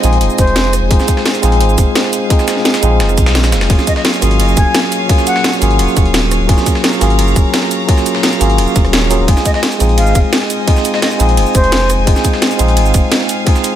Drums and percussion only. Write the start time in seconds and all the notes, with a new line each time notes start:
0.04 closed hi-hat, cabasa
0.13 closed hi-hat
0.21 closed hi-hat
0.30 cabasa
0.38 kick, closed hi-hat, cabasa
0.47 closed hi-hat
0.56 snare, closed hi-hat
0.73 cross-stick, closed hi-hat, cabasa
0.91 kick, closed hi-hat
0.99 snare, cabasa
1.08 kick, closed hi-hat, cabasa
1.17 snare
1.26 snare, closed hi-hat
1.35 closed hi-hat, cabasa
1.43 cross-stick, closed hi-hat, cabasa
1.52 closed hi-hat
1.61 closed hi-hat
1.69 cabasa
1.78 kick, closed hi-hat, cabasa
1.95 snare, closed hi-hat
2.04 snare
2.13 closed hi-hat, cabasa
2.30 kick, closed hi-hat
2.39 snare, cabasa
2.48 snare, closed hi-hat, cabasa
2.57 snare
2.65 snare, closed hi-hat
2.74 snare, closed hi-hat, cabasa
2.83 closed hi-hat, cabasa
3.00 snare, closed hi-hat
3.09 cross-stick, cabasa
3.18 kick, closed hi-hat, cabasa
3.26 cross-stick, snare, closed hi-hat
3.35 snare, closed hi-hat
3.44 snare, closed hi-hat, cabasa
3.52 cross-stick, snare, closed hi-hat, cabasa
3.61 snare, closed hi-hat
3.70 kick, closed hi-hat, ride bell
3.79 snare, cabasa
3.87 kick, closed hi-hat, ride bell, cabasa
3.96 snare
4.05 snare, closed hi-hat, ride bell
4.14 closed hi-hat, cabasa
4.22 cross-stick, closed hi-hat, ride bell, cabasa
4.31 closed hi-hat
4.40 closed hi-hat, ride bell
4.48 cabasa
4.57 kick, closed hi-hat, ride bell, cabasa
4.75 snare, closed hi-hat, ride bell
4.83 snare
4.92 closed hi-hat, ride bell, cabasa
5.09 kick, closed hi-hat, ride bell
5.18 snare, cabasa
5.27 closed hi-hat, ride bell, cabasa
5.36 snare
5.44 snare, closed hi-hat, ride bell
5.53 cabasa
5.62 closed hi-hat, ride bell, cabasa
5.71 closed hi-hat
5.79 closed hi-hat, ride bell
5.88 cabasa
5.97 kick, closed hi-hat, ride bell, cabasa
6.06 closed hi-hat
6.14 snare, closed hi-hat, ride bell
6.31 cross-stick, closed hi-hat, ride bell, cabasa
6.49 kick, closed hi-hat, ride bell
6.58 snare, cabasa
6.66 kick, closed hi-hat, ride bell, cabasa
6.75 snare
6.84 snare, closed hi-hat, ride bell
6.93 closed hi-hat, cabasa
7.01 cross-stick, closed hi-hat, ride bell, cabasa
7.10 closed hi-hat
7.19 closed hi-hat, ride bell
7.28 cabasa
7.36 kick, closed hi-hat, ride bell, cabasa
7.54 snare, closed hi-hat, ride bell
7.63 snare
7.71 closed hi-hat, ride bell, cabasa
7.88 kick, closed hi-hat, ride bell
7.97 snare, cabasa
8.06 closed hi-hat, ride bell, cabasa
8.15 snare
8.23 snare, closed hi-hat, ride bell
8.32 cabasa
8.41 closed hi-hat, ride bell, cabasa
8.50 closed hi-hat
8.58 closed hi-hat, ride bell
8.67 cabasa
8.76 kick, closed hi-hat, ride bell, cabasa
8.85 cross-stick, closed hi-hat
8.93 snare, closed hi-hat, ride bell
9.11 closed hi-hat, ride bell, cabasa
9.28 kick, closed hi-hat, ride bell
9.37 snare, cabasa
9.45 kick, closed hi-hat, ride bell, cabasa
9.54 snare
9.63 snare, closed hi-hat, ride bell
9.72 closed hi-hat, cabasa
9.80 cross-stick, closed hi-hat, ride bell, cabasa
9.89 closed hi-hat
9.98 closed hi-hat, ride bell
10.07 cabasa
10.15 kick, closed hi-hat, ride bell, cabasa
10.33 snare, closed hi-hat, ride bell
10.42 snare
10.50 closed hi-hat, ride bell, cabasa
10.68 kick, closed hi-hat, ride bell
10.76 snare, cabasa
10.85 closed hi-hat, ride bell, cabasa
10.94 snare
11.02 snare, closed hi-hat, ride bell
11.11 cabasa
11.20 closed hi-hat, ride bell, cabasa
11.29 closed hi-hat
11.37 closed hi-hat, ride bell
11.46 cabasa
11.55 kick, closed hi-hat, ride bell, cabasa
11.64 closed hi-hat
11.72 snare, closed hi-hat, ride bell
11.90 cross-stick, closed hi-hat, ride bell, cabasa
12.07 kick, closed hi-hat, ride bell
12.16 snare, cabasa
12.25 kick, closed hi-hat, ride bell, cabasa
12.33 snare
12.42 snare, closed hi-hat, ride bell
12.51 closed hi-hat, cabasa
12.59 closed hi-hat, ride bell, cabasa
12.68 closed hi-hat
12.77 closed hi-hat, ride bell
12.86 cabasa
12.94 kick, closed hi-hat, ride bell, cabasa
13.12 snare, closed hi-hat, ride bell
13.21 snare
13.29 closed hi-hat, ride bell, cabasa
13.47 kick, closed hi-hat, ride bell
13.55 snare, cabasa
13.64 closed hi-hat, ride bell, cabasa